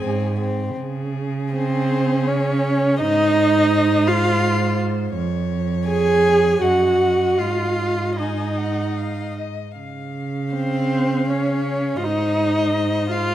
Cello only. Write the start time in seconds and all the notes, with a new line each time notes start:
0.03 G#2
0.79 C#3
3.01 G#2
5.16 F2
6.62 F#2
7.39 G#2
9.78 C#3
12.03 G#2